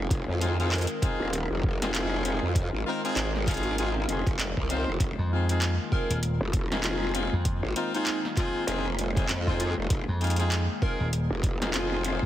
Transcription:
Already playing: ambient pad D#3 G#3 C4 F4
0.10 wobble bass F1, ambient pad A#4, kick, closed hi-hat
0.28 wobble bass F2
0.41 horn section C4 D#4 F4 G#4, closed hi-hat
0.59 horn section C4 D#4 F4 G#4, closed hi-hat
0.72 clap, closed hi-hat
0.75 closed hi-hat
0.78 closed hi-hat
0.81 closed hi-hat
0.87 closed hi-hat
1.02 horn section C4 D#4 F4 G#4, kick, closed hi-hat
1.20 wobble bass D#1
1.33 closed hi-hat
1.50 wobble bass F1
1.63 kick
1.82 horn section C4 D#4 F4 G#4, snare, closed hi-hat
1.94 horn section C4 D#4 F4 G#4, clap, closed hi-hat
2.25 horn section C4 D#4 F4 G#4, closed hi-hat
2.42 wobble bass F2
2.55 kick, closed hi-hat
2.73 wobble bass G#1
2.86 horn section C4 D#4 F4 A#4
3.04 horn section C4 D#4 F4 G#4, closed hi-hat
3.16 wobble bass G#1, clap, closed hi-hat
3.36 snare
3.47 horn section C4 D#4 F4 G#4, kick, clap, closed hi-hat
3.51 closed hi-hat
3.54 closed hi-hat
3.57 closed hi-hat
3.63 closed hi-hat
3.78 horn section C4 D#4 F4 G#4, closed hi-hat
4.08 wobble bass F1, horn section C4 D#4 F4 G#4, closed hi-hat
4.26 wobble bass F1, kick, closed hi-hat
4.38 wobble bass F1, clap, closed hi-hat
4.57 wobble bass C2, kick
4.70 horn section C4 D#4 F4 C5, closed hi-hat
4.87 wobble bass F1
5.00 wobble bass F1, ambient pad A#3 F4, kick, closed hi-hat
5.18 slap bass F2
5.31 horn section C4 D#4 F4 G#4
5.49 horn section C4 D#4 F4 G#4, closed hi-hat
5.62 clap, closed hi-hat
5.92 horn section C4 D#4 F4 G#4, digital synth lead A#4, kick
6.10 slap bass D#1, closed hi-hat
6.23 closed hi-hat
6.41 wobble bass F1
6.53 kick, closed hi-hat
6.72 horn section C4 D#4 F4 G#4, snare, closed hi-hat
6.84 horn section C4 D#4 F4 G#4, digital synth lead F4, clap, closed hi-hat
7.03 digital synth lead F4
7.15 horn section C4 D#4 F4 G#4, closed hi-hat
7.33 slap bass F2
7.45 kick, closed hi-hat
7.63 wobble bass G#1
7.76 horn section C4 D#4 F4 A#4, closed hi-hat
7.94 horn section C4 D#4 F4 G#4, digital synth lead D#4, closed hi-hat
8.07 clap, closed hi-hat
8.25 snare
8.37 horn section C4 D#4 F4 G#4, digital synth lead F4, kick, clap, closed hi-hat
8.67 wobble bass F1, horn section C4 D#4 F4 G#4, closed hi-hat
8.99 closed hi-hat
9.17 horn section C4 D#4 F4 G#4, kick, closed hi-hat
9.29 wobble bass F2, clap, closed hi-hat
9.47 horn section C4 D#4 F4 G#4, digital synth lead F4, kick
9.60 digital synth lead F4, closed hi-hat
9.78 wobble bass F1
9.90 wobble bass F1, ambient pad G#4, kick, closed hi-hat
10.08 slap bass F2
10.21 horn section C4 D#4 F4 G#4, closed hi-hat
10.24 closed hi-hat
10.27 closed hi-hat
10.30 closed hi-hat
10.36 horn section C4 D#4 F4 G#4, closed hi-hat
10.40 closed hi-hat
10.52 clap, closed hi-hat
10.82 horn section C4 D#4 F4 G#4, digital synth lead A#4, kick
11.00 slap bass D#1
11.13 closed hi-hat
11.30 wobble bass F1
11.43 kick, closed hi-hat
11.61 horn section C4 D#4 F4 G#4, snare, closed hi-hat
11.74 horn section C4 D#4 F4 G#4, digital synth lead F4, clap, closed hi-hat
11.92 digital synth lead F4
12.04 horn section C4 D#4 F4 G#4, closed hi-hat
12.22 slap bass F2

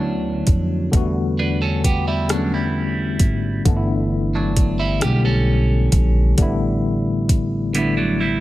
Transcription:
Already playing: upright bass D2, tine electric piano D3 A3 B3 C#4 D4 E4 F#4 C#5, clean electric guitar F#3 D4
0.47 upright bass F2, kick, closed hi-hat
0.91 upright bass E2, tine electric piano D3 G3 A3, kick, closed hi-hat
0.96 tine electric piano B3 F#4
1.39 clean electric guitar D4 B4
1.62 clean electric guitar C#4 A4
1.84 clean electric guitar B3 G4, kick, closed hi-hat
2.08 clean electric guitar G3 E4
2.29 tine electric piano D3 G3 A3, clean electric guitar F#3 D4, cross-stick, closed hi-hat
2.33 tine electric piano B3 C#4
2.54 clean electric guitar G3 E4
3.19 upright bass G#1, kick, closed hi-hat
3.65 upright bass G1, tine electric piano D3 E3 A3 B3, kick, closed hi-hat
3.70 tine electric piano D4
3.76 tine electric piano E4
4.35 clean electric guitar F#3 D4
4.56 kick, closed hi-hat
4.79 clean electric guitar G3 E4
5.00 upright bass B1, tine electric piano D3 G3 A3, clean electric guitar B3 G4, cross-stick, closed hi-hat
5.04 tine electric piano B3 G4
5.25 clean electric guitar C#4 A4
5.92 upright bass A#1, kick, closed hi-hat
6.37 upright bass A1, tine electric piano D3 G3 A3 B3, kick, closed hi-hat
6.42 tine electric piano E4
7.29 kick, closed hi-hat
7.73 tine electric piano D3 G3 A3, clean electric guitar D3 B3, closed hi-hat
7.77 tine electric piano B3 E4
7.97 clean electric guitar F#3 D4
8.20 clean electric guitar G3 E4

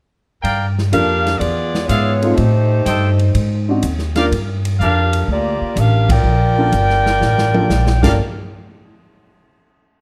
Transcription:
0.42 upright bass G2, trumpet section A#4 D5 F5 G5, kick, ride
0.78 snare
0.92 upright bass F2, upright piano A#3 D4 F4 A4, saxophone section D4 G4 A#4 F5, kick, hi-hat pedal, ride
1.26 snare, ride
1.38 upright bass E2, saxophone section B3 F4 G#4 D5, kick, ride
1.75 snare
1.85 upright bass G#2, saxophone section B3 F4 G#4 C#5, trumpet section G#4 E5
1.89 trumpet section D5 F5, kick, hi-hat pedal, ride
2.22 upright piano A3 C4 D#4 F4, ride
2.35 upright bass A2, saxophone section A3 D#4 G4 C5, kick, ride
2.85 upright bass G2, trumpet section A4 C5 D#5 G5, kick, hi-hat pedal, ride
3.19 ride
3.34 upright bass G#2, kick, ride
3.68 upright piano C4 D4 D#4 F#4
3.83 upright bass D#2, kick, hi-hat pedal, ride
3.99 snare
4.16 upright piano A#3 D4 F4 A#4, trumpet section G4 A#4 D5 F5, snare, ride
4.32 upright bass G2, kick, ride
4.65 ride
4.79 upright bass F2, trumpet section G4 A#4 D5 F5, saxophone section F5, kick, hi-hat pedal
4.83 saxophone section D4 G4 A#4
5.13 ride
5.27 upright bass D2, kick
5.32 saxophone section A#3 F4 G4 D5
5.61 muted upright bass stroke
5.76 upright bass A1, saxophone section D4 G4 A#4 F5, kick, hi-hat pedal, ride
6.09 saxophone section F4 A#4 D5 G5, kick, ride
6.23 upright bass A#1
6.58 upright piano A#3 D4 F4 A4
6.72 upright bass G1, kick, hi-hat pedal, ride
6.90 snare
7.06 snare
7.21 upright bass A1, snare
7.38 snare
7.53 upright piano A#3 D4 F4 A4, high tom
7.69 upright bass A#1, snare, hi-hat pedal
7.87 snare
8.02 upright bass G1, upright piano A#3 D4 F4 A4, saxophone section F4 A#4 D5 G5, trumpet section G4 A#4 D5 F5, kick, snare, crash

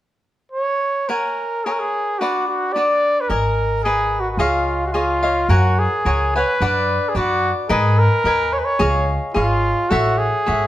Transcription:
0.52 trumpet C#5
1.09 cavaquinho A#4 C#5 F#5 G#5, trumpet A#4
1.65 trumpet G#4, cavaquinho A#4 C#5 F#5 G#5
1.71 trumpet A#4
1.79 trumpet G#4
2.19 cavaquinho D4 B4 D5 F#5, trumpet F#4
2.48 trumpet F#4
2.73 cavaquinho D4 B4 F#5, trumpet D5
2.77 cavaquinho D5
3.21 trumpet B4
3.29 upright bass G#1, trumpet A#4, cavaquinho A#4 D#5 G#5
3.84 trumpet G#4, cavaquinho A#4 B4 D#5 G#5
4.20 trumpet F#4
4.31 trumpet F#4
4.37 upright bass C#2, trumpet F4, cavaquinho G#4 C#5 D#5 F5
4.86 trumpet F#4
4.92 trumpet F4, cavaquinho G#4 C#5 D#5 F5
5.23 cavaquinho C#5 D#5 F5
5.49 upright bass F#2, trumpet F#4, cavaquinho A#4 C#5 F#5 G#5
5.79 trumpet G#4
6.05 upright bass C#2, cavaquinho A#4 C#5 F#5 G#5
6.36 trumpet B4, cavaquinho C#5 F#5 G#5
6.61 upright bass F#2, cavaquinho D4 B4 D5 F#5
7.09 trumpet G#4
7.15 upright bass F#2, cavaquinho D4 B4 D5 F#5, trumpet F#4
7.69 upright bass G#2, trumpet G#4, cavaquinho A#4 B4 D#5 G#5
7.99 trumpet A#4
8.24 upright bass D#2, cavaquinho A#4 B4 D#5 G#5
8.53 trumpet C#5
8.59 trumpet B4
8.65 trumpet C#5
8.79 upright bass C#2, cavaquinho G#4 C#5 D#5 F5
9.34 upright bass G#1, trumpet F4, cavaquinho G#4 C#5 D#5 F5
9.90 upright bass A1, trumpet F#4, cavaquinho A4 C#5 E5 F#5
10.18 trumpet G#4
10.46 upright bass G#1, cavaquinho A4 C#5 E5 F#5

